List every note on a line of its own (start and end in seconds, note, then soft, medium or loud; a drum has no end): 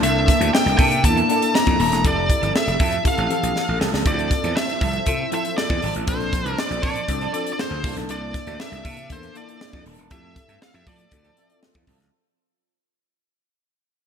0.00 0.29 C2 loud
0.00 0.58 A#3 medium
0.00 2.01 A#3 medium
0.00 0.26 A#3 medium
0.00 0.58 D4 medium
0.00 0.26 D4 medium
0.00 0.59 E4 medium
0.00 0.26 E4 medium
0.00 0.59 A4 medium
0.00 0.26 A4 loud
0.00 2.01 E5 medium
0.00 0.50 E5 loud
0.00 2.01 A5 medium
0.00 2.01 D6 medium
0.00 closed hi-hat medium
0.28 muted clean electric guitar stroke soft
0.28 kick medium
0.28 snare soft
0.28 closed hi-hat medium
0.40 0.49 D2 medium
0.40 0.52 A#3 medium
0.40 0.52 D4 medium
0.40 0.53 E4 medium
0.40 0.53 A4 medium
0.40 closed hi-hat soft
0.53 0.77 G5 loud
0.53 muted clean electric guitar stroke soft
0.53 snare loud
0.66 0.75 C2 loud
0.66 muted clean electric guitar stroke medium
0.66 closed hi-hat soft
0.77 1.05 C3 medium
0.77 0.97 A#3 medium
0.77 0.91 D4 medium
0.77 0.90 E4 loud
0.77 0.90 A4 medium
0.77 1.04 G5 medium
0.77 kick medium
0.77 open hi-hat medium
0.91 muted clean electric guitar stroke medium
0.91 closed hi-hat soft
1.03 1.21 E2 medium
1.03 1.23 A#3 medium
1.03 1.23 D4 medium
1.03 1.23 E4 medium
1.03 1.23 A4 medium
1.03 1.56 A5 loud
1.03 muted clean electric guitar stroke soft
1.03 kick medium
1.03 closed hi-hat medium
1.16 1.27 A#3 medium
1.16 1.27 D4 medium
1.16 1.28 E4 medium
1.16 1.28 A4 medium
1.16 closed hi-hat soft
1.28 1.43 A#3 medium
1.28 1.86 A#3 medium
1.28 1.41 D4 medium
1.28 1.86 D4 medium
1.28 1.41 E4 medium
1.28 1.86 E4 medium
1.28 1.40 A4 medium
1.28 1.86 A4 medium
1.28 closed hi-hat medium
1.42 muted clean electric guitar stroke soft
1.42 closed hi-hat medium
1.54 1.78 A#5 loud
1.54 muted clean electric guitar stroke soft
1.54 snare loud
1.67 1.76 F2 medium
1.67 muted clean electric guitar stroke soft
1.67 kick medium
1.67 closed hi-hat soft
1.80 1.92 D#1 loud
1.80 1.92 A#3 medium
1.80 1.91 D4 medium
1.80 1.91 E4 medium
1.80 1.90 A4 medium
1.80 2.06 A#5 loud
1.80 open hi-hat medium
1.92 2.05 E1 medium
1.92 2.04 A#3 medium
1.92 2.04 D4 medium
1.92 2.04 E4 medium
1.92 2.04 A4 medium
1.92 snare soft
1.92 closed hi-hat medium
2.04 2.31 F1 loud
2.04 2.27 F3 medium
2.04 2.80 C4 medium
2.04 2.28 C4 medium
2.04 2.80 E4 medium
2.04 2.28 E4 loud
2.04 2.80 G4 medium
2.04 4.04 A4 medium
2.04 2.80 A4 medium
2.04 2.28 A4 loud
2.04 2.52 D5 medium
2.04 6.04 A5 medium
2.04 4.04 E6 medium
2.04 kick loud
2.04 closed hi-hat medium
2.30 muted clean electric guitar stroke soft
2.30 kick medium
2.30 closed hi-hat medium
2.41 2.51 G1 medium
2.41 2.53 F3 medium
2.41 2.54 C4 medium
2.41 2.54 E4 medium
2.41 2.55 A4 medium
2.41 closed hi-hat soft
2.55 3.03 E5 medium
2.55 muted clean electric guitar stroke soft
2.55 snare loud
2.67 2.76 F1 loud
2.67 muted clean electric guitar stroke soft
2.67 closed hi-hat soft
2.80 2.97 F2 medium
2.80 2.99 F3 medium
2.80 2.93 C4 medium
2.80 2.92 E4 medium
2.80 2.92 A4 medium
2.80 kick loud
2.80 open hi-hat medium
2.92 muted clean electric guitar stroke soft
2.92 closed hi-hat medium
3.04 3.23 C4 medium
3.04 3.23 E4 medium
3.04 3.24 G4 medium
3.04 3.24 A4 medium
3.04 3.78 F5 medium
3.04 muted clean electric guitar stroke soft
3.04 kick medium
3.04 closed hi-hat medium
3.17 3.27 A1 medium
3.17 3.29 F3 medium
3.17 3.29 C4 medium
3.17 3.29 E4 medium
3.17 3.29 A4 medium
3.17 closed hi-hat soft
3.29 3.87 E3 medium
3.29 3.45 F3 medium
3.29 3.87 C4 medium
3.29 3.42 C4 medium
3.29 3.42 E4 medium
3.29 3.87 G4 medium
3.29 3.87 A4 medium
3.29 3.41 A4 medium
3.29 closed hi-hat medium
3.42 3.52 A#1 medium
3.42 muted clean electric guitar stroke soft
3.42 closed hi-hat medium
3.55 muted clean electric guitar stroke soft
3.55 snare medium
3.68 3.77 A1 medium
3.68 muted clean electric guitar stroke soft
3.80 3.90 C2 medium
3.80 3.93 F3 medium
3.80 3.92 C4 medium
3.80 3.92 E4 loud
3.80 3.92 A4 loud
3.80 snare loud
3.93 4.02 C#2 medium
3.93 4.04 F3 medium
3.93 4.05 C4 medium
3.93 4.05 E4 medium
3.93 4.06 A4 medium
3.93 snare medium
4.05 4.32 D2 loud
4.05 4.29 F3 medium
4.05 4.81 C4 medium
4.05 4.29 C4 medium
4.05 4.81 E4 medium
4.05 4.29 E4 medium
4.05 4.81 F4 medium
4.05 4.82 A4 medium
4.05 4.30 A4 medium
4.05 6.05 C5 medium
4.05 4.56 D5 loud
4.05 6.05 E6 medium
4.05 kick loud
4.05 closed hi-hat medium
4.19 closed hi-hat soft
4.31 muted clean electric guitar stroke soft
4.31 kick medium
4.31 snare soft
4.31 closed hi-hat medium
4.44 4.52 E2 medium
4.44 4.56 F3 medium
4.44 4.56 C4 medium
4.44 4.56 E4 medium
4.44 4.57 A4 medium
4.44 closed hi-hat soft
4.56 4.82 E5 loud
4.56 muted clean electric guitar stroke soft
4.56 snare loud
4.69 muted clean electric guitar stroke soft
4.69 closed hi-hat soft
4.81 4.99 C2 medium
4.81 5.00 F3 medium
4.81 4.95 C4 medium
4.81 4.94 E4 medium
4.81 4.94 A4 medium
4.81 5.29 E5 loud
4.81 kick loud
4.81 open hi-hat medium
4.93 muted clean electric guitar stroke medium
4.93 closed hi-hat soft
5.06 5.24 C3 medium
5.06 5.25 C4 medium
5.06 5.26 E4 medium
5.06 5.26 F4 medium
5.06 5.26 A4 medium
5.06 muted clean electric guitar stroke medium
5.06 kick medium
5.06 closed hi-hat medium
5.20 muted clean electric guitar stroke medium
5.31 5.51 F3 medium
5.31 5.88 C4 medium
5.31 5.45 C4 medium
5.31 5.88 E4 medium
5.31 5.44 E4 loud
5.31 5.89 F4 medium
5.31 5.89 A4 medium
5.31 5.44 A4 loud
5.31 5.57 E5 loud
5.31 closed hi-hat medium
5.45 muted clean electric guitar stroke soft
5.45 closed hi-hat medium
5.57 5.93 D5 medium
5.57 muted clean electric guitar stroke soft
5.57 snare loud
5.70 5.79 E2 medium
5.70 muted clean electric guitar stroke soft
5.70 kick loud
5.82 5.92 G#1 loud
5.82 5.95 F3 medium
5.82 5.95 C4 medium
5.82 5.95 E4 loud
5.82 5.94 A4 loud
5.82 open hi-hat medium
5.95 6.04 A1 medium
5.95 6.07 F3 medium
5.95 6.07 C4 medium
5.95 6.09 E4 medium
5.95 6.08 A4 medium
5.95 closed hi-hat medium
6.07 6.45 A#1 loud
6.07 6.31 F3 medium
6.07 6.83 C4 medium
6.07 6.31 C4 medium
6.07 6.83 D4 medium
6.07 6.32 D4 medium
6.07 6.83 F4 medium
6.07 6.84 A4 medium
6.07 6.32 A4 medium
6.07 6.60 C5 medium
6.07 7.83 C5 medium
6.07 7.83 A5 medium
6.07 7.83 D6 medium
6.07 kick loud
6.07 closed hi-hat medium
6.20 closed hi-hat soft
6.33 muted clean electric guitar stroke soft
6.33 kick medium
6.33 snare soft
6.33 closed hi-hat medium
6.45 6.54 C2 medium
6.45 6.57 F3 medium
6.45 6.58 C4 medium
6.45 6.58 D4 medium
6.45 6.59 A4 medium
6.45 closed hi-hat soft
6.58 6.82 D5 medium
6.58 muted clean electric guitar stroke soft
6.58 snare loud
6.71 6.79 A#1 loud
6.71 muted clean electric guitar stroke soft
6.71 closed hi-hat soft
6.83 7.01 A#2 medium
6.83 7.02 F3 medium
6.83 6.96 C4 loud
6.83 6.96 D4 medium
6.83 6.95 A4 medium
6.83 7.32 D5 medium
6.83 kick loud
6.83 open hi-hat medium
6.96 muted clean electric guitar stroke soft
6.96 closed hi-hat soft
7.08 7.26 C2 medium
7.08 7.27 C4 medium
7.08 7.27 D4 medium
7.08 7.28 F4 medium
7.08 7.28 A4 medium
7.08 kick medium
7.08 closed hi-hat medium
7.21 7.33 F3 medium
7.21 7.34 C4 medium
7.21 7.34 D4 medium
7.21 7.35 A4 medium
7.21 closed hi-hat soft
7.33 7.49 F3 medium
7.33 7.84 C4 medium
7.33 7.47 C4 medium
7.33 7.82 D4 medium
7.33 7.46 D4 medium
7.33 7.84 F4 medium
7.33 7.85 A4 medium
7.33 7.46 A4 medium
7.33 7.51 D5 medium
7.33 closed hi-hat medium
7.47 muted clean electric guitar stroke soft
7.47 closed hi-hat medium
7.53 7.59 D5 medium
7.59 7.95 C5 medium
7.59 muted clean electric guitar stroke soft
7.59 snare loud
7.71 7.84 D2 medium
7.71 muted clean electric guitar stroke soft
7.83 7.93 C2 loud
7.83 7.97 E3 medium
7.83 8.64 A#3 medium
7.83 10.09 A#3 medium
7.83 7.97 A#3 medium
7.83 8.64 D4 medium
7.83 7.97 D4 medium
7.83 8.65 E4 medium
7.83 7.90 G4 medium
7.83 7.96 A4 medium
7.83 10.09 E5 medium
7.83 10.09 A5 medium
7.83 10.09 D6 medium
7.83 kick loud
7.83 open hi-hat medium
7.90 8.68 A4 medium
7.96 8.05 B1 medium
7.96 8.08 E3 medium
7.96 8.09 A#3 medium
7.96 8.09 D4 medium
7.96 8.10 A4 medium
7.96 snare soft
7.96 closed hi-hat medium
8.09 8.35 C2 loud
8.09 8.32 E3 medium
8.09 8.33 A#3 medium
8.09 8.33 D4 loud
8.09 8.33 A4 loud
8.09 8.60 D5 loud
8.09 closed hi-hat medium
8.34 muted clean electric guitar stroke soft
8.34 kick medium
8.34 snare soft
8.34 closed hi-hat medium
8.47 8.56 D2 medium
8.47 8.59 E3 medium
8.47 8.59 A#3 medium
8.47 8.60 D4 medium
8.47 8.60 A4 medium
8.47 closed hi-hat soft
8.60 9.12 E5 loud
8.60 muted clean electric guitar stroke soft
8.60 snare loud
8.72 8.81 C2 loud
8.72 muted clean electric guitar stroke medium
8.72 closed hi-hat soft
8.85 9.12 C3 medium
8.85 9.04 E3 medium
8.85 8.97 A#3 medium
8.85 8.97 D4 medium
8.85 8.96 A4 medium
8.85 kick medium
8.85 open hi-hat medium
8.97 muted clean electric guitar stroke medium
8.97 closed hi-hat medium
9.09 9.27 E2 medium
9.09 9.29 A#3 medium
9.09 9.29 D4 medium
9.09 9.29 E4 medium
9.09 9.29 A4 medium
9.09 9.35 C5 medium
9.09 muted clean electric guitar stroke soft
9.09 kick medium
9.09 closed hi-hat medium
9.22 muted clean electric guitar stroke soft
9.22 closed hi-hat soft
9.34 9.48 E3 medium
9.34 9.92 A#3 medium
9.34 9.47 A#3 medium
9.34 9.92 D4 medium
9.34 9.47 D4 medium
9.34 9.41 D#4 medium
9.34 9.92 A4 medium
9.34 9.47 A4 loud
9.34 9.83 D5 medium
9.34 closed hi-hat medium
9.41 9.95 E4 medium
9.48 9.58 E3 soft
9.48 9.59 A#3 medium
9.48 9.59 D4 medium
9.48 9.60 A4 medium
9.48 closed hi-hat medium
9.60 muted clean electric guitar stroke soft
9.60 snare loud
9.73 9.82 F2 medium
9.73 muted clean electric guitar stroke soft
9.73 kick medium
9.85 9.98 D#1 loud
9.85 9.98 E3 medium
9.85 9.98 A#3 loud
9.85 9.97 D4 loud
9.85 9.97 A4 loud
9.85 open hi-hat medium
9.98 10.07 E1 medium
9.98 10.10 E3 soft
9.98 10.10 A#3 medium
9.98 10.11 D4 medium
9.98 10.10 A4 medium
9.98 closed hi-hat soft
10.10 10.37 F2 loud
10.10 10.34 A3 medium
10.10 10.86 C4 medium
10.10 10.34 C4 medium
10.10 10.86 E4 medium
10.10 10.34 E4 loud
10.10 10.87 G4 medium
10.10 10.35 A4 medium
10.10 10.87 A4 medium
10.10 11.11 A4 medium
10.10 10.58 E5 loud
10.10 11.11 E5 medium
10.10 12.11 E6 medium
10.10 kick loud
10.10 closed hi-hat medium
10.36 muted clean electric guitar stroke soft
10.36 kick loud
10.36 snare soft
10.36 closed hi-hat medium
10.48 10.57 G2 medium
10.48 10.60 A3 medium
10.48 10.61 C4 medium
10.48 10.61 E4 medium
10.48 10.61 A4 medium
10.48 closed hi-hat soft
10.61 10.75 F5 loud
10.61 muted clean electric guitar stroke soft
10.61 snare loud
10.74 10.83 F2 loud
10.74 10.88 E5 loud
10.74 muted clean electric guitar stroke soft
10.74 closed hi-hat soft
10.86 11.04 F3 medium
10.86 11.05 A3 medium
10.86 10.99 C4 medium
10.86 10.99 E4 medium
10.86 10.98 A4 medium
10.86 11.59 D5 medium
10.86 kick loud
10.86 open hi-hat medium
10.98 muted clean electric guitar stroke medium
10.98 closed hi-hat soft
11.11 11.29 D2 medium
11.11 11.30 C4 medium
11.11 11.31 E4 medium
11.11 12.11 F4 medium
11.11 11.31 F4 medium
11.11 11.31 A4 medium
11.11 12.12 C5 medium
11.11 muted clean electric guitar stroke soft
11.11 kick medium
11.11 closed hi-hat medium
11.24 11.37 F3 medium
11.24 11.37 C4 medium
11.24 11.37 E4 medium
11.24 11.38 A4 medium
11.24 closed hi-hat soft
11.36 11.52 F3 medium
11.36 11.93 C4 medium
11.36 11.50 C4 medium
11.36 11.49 E4 medium
11.36 11.94 F4 medium
11.36 11.94 A4 medium
11.36 11.49 A4 medium
11.36 11.94 E5 medium
11.36 closed hi-hat medium
11.50 muted clean electric guitar stroke medium
11.50 closed hi-hat medium
11.63 12.09 F5 medium
11.63 muted clean electric guitar stroke soft
11.63 snare loud
11.74 11.84 E2 medium
11.74 muted clean electric guitar stroke medium
11.74 kick medium
11.74 closed hi-hat soft
11.87 12.00 C2 loud
11.87 12.06 F3 medium
11.87 12.00 C4 loud
11.87 11.99 E4 loud
11.87 11.99 A4 loud
11.87 kick medium
11.87 open hi-hat medium
12.00 12.09 C#2 medium
12.00 muted clean electric guitar stroke soft
12.00 snare soft
12.00 closed hi-hat medium